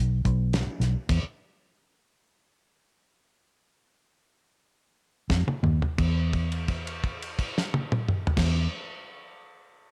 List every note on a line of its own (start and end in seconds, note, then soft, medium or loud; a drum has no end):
0.00 0.22 B1 medium
0.25 0.63 B1 loud
0.25 kick medium
0.25 closed hi-hat medium
0.53 snare loud
0.53 closed hi-hat medium
0.67 muted fingered electric bass stroke soft
0.80 0.94 B1 medium
0.80 snare soft
0.80 closed hi-hat medium
1.09 1.22 E2 medium
1.09 kick loud
1.09 closed hi-hat medium
1.09 crash medium
1.23 muted fingered electric bass stroke soft
5.30 5.45 F2 loud
5.30 kick medium
5.30 snare medium
5.47 muted fingered electric bass stroke soft
5.47 high tom medium
5.63 5.79 D#2 medium
5.63 mid tom medium
5.82 floor tom medium
5.98 8.25 E2 medium
5.98 kick loud
5.98 crash medium
6.33 kick medium
6.33 crash soft
6.52 crash soft
6.68 kick medium
6.68 crash soft
6.87 crash soft
7.04 kick medium
7.04 crash soft
7.22 crash soft
7.39 kick medium
7.39 crash medium
7.58 snare medium
7.74 high tom medium
7.92 mid tom medium
8.09 mid tom loud
8.27 floor tom loud
8.37 8.66 E2 medium
8.37 kick loud
8.37 snare medium
8.37 crash loud